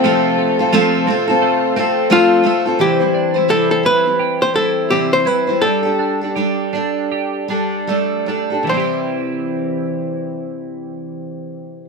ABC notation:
X:1
M:4/4
L:1/16
Q:"Swing 16ths" 1/4=82
K:C
V:1 name="Hollow-body jazz guitar"
C12 F4 | G4 A A B3 c A2 G c B2 | A12 z4 | c16 |]
V:2 name="Clean electric guitar"
[A,F]2 A,2 F2 C2 A,2 C2 F2 A,2 | E,2 D E G2 E2 G2 E2 C2 E2 | G,2 D2 G2 D2 G2 D2 A,2 D2 | [E,CEG]16 |]
V:3 name="Steel-string acoustic guitar"
[F,A,CFA]3 [CFA] [F,A,CFA]2 [A,CFA] [CFA]3 [A,CFA]2 [F,A,CFA]2 [A,CFA] [CFA] | [C,E,G,CEc] [G,CEc]2 [G,CEc] [C,E,G,CEc]2 [G,CEc] [G,CE]3 [G,CEc]2 [C,E,G,CEc]2 [G,CEc] [G,CEc] | [G,DGA] [DGA]2 [DGA] [G,DGA]2 [G,DGA]4 [G,DGA]2 [G,DGA]2 [G,DGA] [DGA] | [C,E,G,CEc]16 |]
V:4 name="String section"
[C,F,A,FA]16 | z16 | z16 | z16 |]